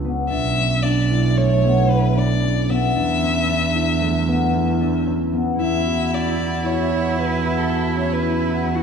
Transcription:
Already playing: C#2 C#4 F4
0.04 B3
0.29 B1 D4 E5
0.57 C#4
0.83 D4 D5
1.11 E4
1.37 A3 C#5
1.64 B3
1.90 E4 B4
2.17 D4 D5
2.43 C#4
2.69 B3 E5
2.96 E2 D4
3.22 C#4
3.49 D4
3.75 E4
4.01 A3
4.28 B3
4.54 E4
4.81 D4
5.07 C#4
5.33 B3
5.59 E2 E4 E5
5.86 F#4
6.12 E4 D5
6.38 F#4
6.64 E4 C#5
6.91 F#4
7.17 E4 B4
7.44 F#4
7.58 A4
7.70 E4
7.96 C#4 C#5
8.12 B4
8.22 E4
8.49 F#4
8.75 E4 F#4

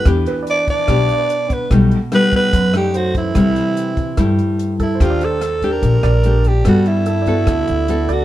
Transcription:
0.05 E2 E3 B3 D4 G4, kick, cross-stick, closed hi-hat
0.26 B4, closed hi-hat
0.43 D5
0.47 D4 D5, closed hi-hat
0.68 D4 D5, kick, closed hi-hat
0.88 B1 B2 B3 D4 G4, kick, cross-stick, closed hi-hat
1.09 closed hi-hat
1.30 closed hi-hat
1.50 B3 B4, kick, closed hi-hat
1.70 B1 B2 G3 A3 D#4, kick, cross-stick, closed hi-hat
1.91 closed hi-hat
2.12 G3 A3 B3 D#4 B4, cross-stick, closed hi-hat
2.32 B3, kick, closed hi-hat
2.36 B4
2.53 F#2, kick, closed hi-hat
2.74 G3 A3 D#4 G4, cross-stick, closed hi-hat
2.94 F#3 F#4 C5, closed hi-hat
3.15 E3 E4, kick, closed hi-hat
3.35 C2 C3 G3 A3 E4, kick, cross-stick, closed hi-hat
3.56 closed hi-hat
3.77 closed hi-hat
3.97 kick, closed hi-hat
4.17 G2 G3 A3 E4, kick, cross-stick, closed hi-hat
4.39 closed hi-hat
4.59 closed hi-hat
4.80 E4 A4, kick, closed hi-hat
4.95 C5
5.00 D#2 D#3 A3 D4 F4 G4, kick, cross-stick, closed hi-hat
5.10 D5
5.21 C5, closed hi-hat
5.25 A4
5.41 cross-stick, closed hi-hat
5.62 D4 G4, kick, closed hi-hat
5.72 A#4
5.82 A#1 A#2, kick, closed hi-hat
6.03 A#1 D5, cross-stick, closed hi-hat
6.24 A3 D4 G4, closed hi-hat
6.44 G4, kick, closed hi-hat
6.65 G2 G3 B3 F#4 A4, kick, cross-stick, closed hi-hat
6.86 E4, closed hi-hat
7.06 A4, closed hi-hat
7.22 D5
7.26 B3 F#4 A4, kick, closed hi-hat
7.47 D2 D3, kick, cross-stick, closed hi-hat
7.68 D2, closed hi-hat
7.88 B3 F#4 A4, closed hi-hat
8.09 F#4 D5, kick, closed hi-hat

